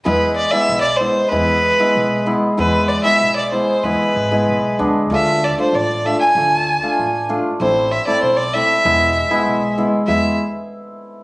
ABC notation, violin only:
X:1
M:2/4
L:1/16
Q:1/4=96
K:none
V:1 name="Violin"
B2 d e2 d c2 | B6 z2 | B2 d e2 d c2 | B6 z2 |
e2 d c d2 e ^g- | ^g6 z2 | c2 e d c d e2- | e6 z2 |
e2 z6 |]